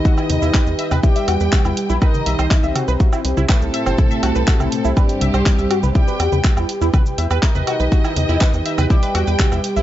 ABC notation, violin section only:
X:1
M:4/4
L:1/8
Q:1/4=122
K:Em
V:1 name="Violin section"
^d4 g4 | ^d3 z3 A2- | A4 G4 | g3 z3 ^d2- |
^d4 g4 |]